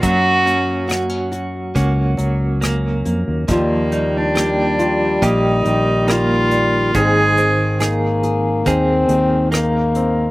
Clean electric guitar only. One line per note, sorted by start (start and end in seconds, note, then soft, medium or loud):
0.00 3.48 F#3 medium
0.00 1.75 A#3 medium
0.00 0.12 D#4 medium
0.00 0.12 G4 medium
0.46 1.74 C#4 medium
0.89 1.75 F#4 medium
1.75 2.61 A#3 soft
1.75 3.58 C#4 soft
1.75 3.58 F#4 soft
2.61 5.22 A#3 medium
3.48 6.94 F3 medium
3.92 5.22 D#4 soft
4.35 5.22 G4 medium
5.22 6.08 A#3 soft
5.22 7.38 D#4 soft
5.22 7.03 G4 medium
6.08 7.41 A#3 medium
6.95 10.31 D#3 medium
7.38 8.65 C4 soft
7.80 8.66 G#4 medium
8.66 9.51 A#3 medium
8.66 10.31 C4 soft
8.66 10.31 G#4 medium
9.52 10.31 A#3 medium